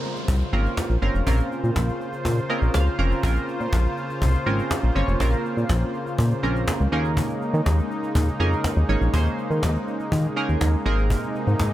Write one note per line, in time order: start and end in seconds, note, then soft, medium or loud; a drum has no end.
0.00 10.82 C#3 medium
0.00 0.12 A#3 medium
0.00 11.73 A#3 medium
0.00 0.12 C4 medium
0.00 0.12 C#4 medium
0.00 0.12 F4 medium
0.00 6.88 F4 medium
0.00 0.12 A#4 medium
0.00 6.88 C5 medium
0.00 cajon slap soft
0.00 downlifter medium
0.16 cajon slap soft
0.28 0.43 C2 loud
0.28 cajon bass loud
0.41 cajon slap soft
0.53 0.68 G#1 loud
0.53 0.94 A#3 medium
0.53 0.94 C4 medium
0.53 0.94 C#4 medium
0.53 0.94 F4 medium
0.53 0.94 A#4 loud
0.53 cajon slap soft
0.65 cajon slap soft
0.77 cajon bass loud
0.77 cajon slap loud
0.90 0.97 A#1 loud
0.90 cajon slap soft
1.02 1.09 G1 loud
1.02 1.22 A#3 medium
1.02 1.22 C4 medium
1.02 1.23 C#4 medium
1.02 1.23 F4 medium
1.02 1.23 A#4 medium
1.02 cajon slap soft
1.14 1.22 F1 loud
1.14 cajon slap soft
1.26 1.42 A#1 loud
1.26 2.08 A#3 medium
1.26 2.08 C4 medium
1.26 2.08 C#4 medium
1.26 2.08 F4 medium
1.26 2.09 A#4 loud
1.26 cajon bass loud
1.39 cajon slap soft
1.51 cajon slap soft
1.64 1.71 A#2 loud
1.64 cajon slap soft
1.76 1.91 A#1 loud
1.76 cajon bass loud
1.76 cajon slap loud
1.88 cajon slap soft
2.00 cajon slap soft
2.13 cajon slap soft
2.25 2.40 A#2 loud
2.25 cajon bass loud
2.37 cajon slap soft
2.49 2.90 A#3 medium
2.49 2.90 C4 medium
2.49 2.90 C#4 medium
2.49 2.91 F4 medium
2.49 2.91 A#4 medium
2.49 2.73 D#5 medium
2.49 cajon slap soft
2.62 2.69 A#1 loud
2.62 cajon slap soft
2.74 2.89 C#2 medium
2.74 2.97 F5 medium
2.74 cajon bass loud
2.74 cajon slap loud
2.98 3.14 F1 medium
2.98 3.19 A#3 medium
2.98 3.19 C4 medium
2.98 3.19 C#4 medium
2.98 3.19 F4 medium
2.98 3.19 A#4 medium
2.98 3.22 A#5 medium
2.98 cajon slap soft
3.11 cajon slap soft
3.23 3.38 A#1 loud
3.23 4.05 A#3 medium
3.23 4.05 C4 medium
3.23 4.05 C#4 medium
3.23 4.05 F4 medium
3.23 4.05 A#4 loud
3.23 cajon bass loud
3.36 cajon slap soft
3.48 cajon slap soft
3.60 3.68 A#2 loud
3.60 cajon slap soft
3.73 3.87 A#1 loud
3.73 cajon bass loud
3.73 cajon slap loud
3.85 cajon slap soft
3.97 cajon slap soft
4.09 cajon slap soft
4.22 4.37 C2 loud
4.22 cajon bass loud
4.34 cajon slap soft
4.46 4.61 G#1 loud
4.46 4.87 A#3 medium
4.46 4.87 C4 medium
4.46 4.87 C#4 medium
4.46 4.87 F4 medium
4.46 4.87 A#4 medium
4.46 cajon slap soft
4.59 cajon slap soft
4.71 cajon bass loud
4.71 cajon slap loud
4.83 4.91 A#1 medium
4.83 cajon slap soft
4.95 5.03 G1 loud
4.95 5.16 A#3 medium
4.95 5.16 C4 medium
4.95 5.16 C#4 medium
4.95 5.16 F4 medium
4.95 5.16 C#5 medium
4.95 cajon slap soft
5.08 5.15 F1 loud
5.08 cajon slap soft
5.20 5.35 A#1 loud
5.20 6.02 A#3 medium
5.20 6.02 C4 medium
5.20 6.02 C#4 medium
5.20 6.02 F4 medium
5.20 6.02 A#4 medium
5.20 cajon bass loud
5.33 cajon slap soft
5.45 cajon slap soft
5.57 5.64 A#2 loud
5.57 cajon slap soft
5.69 5.84 A#1 medium
5.69 cajon bass loud
5.69 cajon slap loud
5.82 cajon slap soft
5.94 cajon slap soft
6.06 cajon slap soft
6.19 6.33 A#2 loud
6.19 cajon bass loud
6.31 cajon slap soft
6.43 6.65 A#1 medium
6.43 6.84 A#3 medium
6.43 6.84 C4 medium
6.43 6.84 C#4 medium
6.43 6.84 F4 medium
6.43 6.84 A#4 medium
6.43 cajon slap soft
6.56 cajon slap soft
6.68 cajon bass loud
6.68 cajon slap loud
6.80 6.87 C#2 loud
6.80 cajon slap soft
6.92 7.22 D#2 loud
6.92 11.73 G#3 medium
6.92 7.74 A#3 medium
6.92 7.74 C#4 medium
6.92 10.82 D#4 medium
6.92 7.74 D#4 medium
6.92 7.74 G#4 medium
6.92 7.74 A#4 loud
6.92 cajon slap soft
7.05 cajon slap soft
7.17 cajon bass loud
7.29 cajon slap soft
7.42 cajon slap soft
7.54 7.61 D#3 loud
7.54 cajon slap soft
7.66 7.81 D#2 loud
7.66 cajon bass loud
7.66 cajon slap loud
7.79 cajon slap soft
7.91 cajon slap soft
8.03 cajon slap soft
8.15 8.30 D#2 medium
8.15 cajon bass loud
8.27 cajon slap soft
8.40 8.55 F2 loud
8.40 8.81 A#3 medium
8.40 8.81 C#4 medium
8.40 8.81 D#4 medium
8.40 8.81 G#4 medium
8.40 8.81 A#4 medium
8.40 cajon slap soft
8.52 cajon slap soft
8.64 cajon bass loud
8.64 cajon slap loud
8.77 8.84 D#2 medium
8.77 cajon slap soft
8.89 8.96 G#1 loud
8.89 9.09 A#3 medium
8.89 9.09 C#4 medium
8.89 9.09 D#4 medium
8.89 9.09 G#4 medium
8.89 9.10 C#5 medium
8.89 cajon slap soft
9.01 9.09 A#1 loud
9.01 cajon slap soft
9.13 9.28 D#2 loud
9.13 9.95 A#3 medium
9.13 9.95 C#4 medium
9.13 9.95 D#4 medium
9.13 9.95 G#4 medium
9.13 9.95 C5 loud
9.13 cajon bass loud
9.26 cajon slap soft
9.38 cajon slap soft
9.50 9.64 D#3 loud
9.50 cajon slap soft
9.63 9.78 D#2 medium
9.63 cajon bass loud
9.63 cajon slap loud
9.75 cajon slap soft
9.87 cajon slap soft
10.00 cajon slap soft
10.12 10.27 D#3 loud
10.12 cajon bass loud
10.24 cajon slap soft
10.36 10.77 A#3 medium
10.36 10.77 C#4 medium
10.36 10.77 D#4 medium
10.36 10.77 G#4 medium
10.36 10.78 A#4 loud
10.36 cajon slap soft
10.49 10.56 D#2 loud
10.49 cajon slap soft
10.61 10.76 D#2 medium
10.61 cajon bass loud
10.61 cajon slap loud
10.73 cajon slap soft
10.85 11.15 G#1 loud
10.85 11.73 C3 medium
10.85 11.67 A#3 medium
10.85 11.67 C4 medium
10.85 11.67 D#4 medium
10.85 11.73 D#4 medium
10.85 11.68 G#4 medium
10.85 11.68 A#4 loud
10.85 cajon slap soft
10.98 cajon slap soft
11.10 cajon bass loud
11.23 cajon slap soft
11.35 cajon slap soft
11.47 11.55 G#2 loud
11.47 cajon slap soft
11.60 11.73 G#1 loud
11.60 cajon bass loud
11.60 cajon slap loud